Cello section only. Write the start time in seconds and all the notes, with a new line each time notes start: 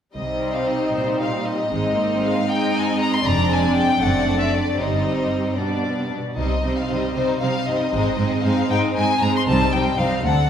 0.15 C3
0.94 A#2
1.71 G#2
3.25 F2
4.01 F#2
4.78 G2
5.57 B2
5.98 C3
6.10 B2
6.37 C3
6.64 C3
6.90 C3
7.16 C3
7.42 C3
7.68 C3
7.93 G#2
8.19 G#2
8.44 G#2
8.70 G#2
8.96 G#2
9.21 G#2
9.47 C2
9.72 C2
9.98 C2
10.24 D2